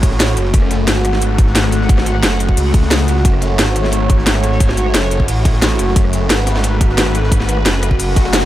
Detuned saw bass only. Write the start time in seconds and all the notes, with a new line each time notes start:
Already playing: A1
0.37 F#1
0.54 F#1
0.88 G#1
2.23 F#1
2.57 C#2
3.08 C#2
3.25 F#1
3.59 G#1
4.94 F#1
5.28 A1
5.79 F#1
5.96 F#1
6.30 G#1
7.66 F#1
7.99 F#1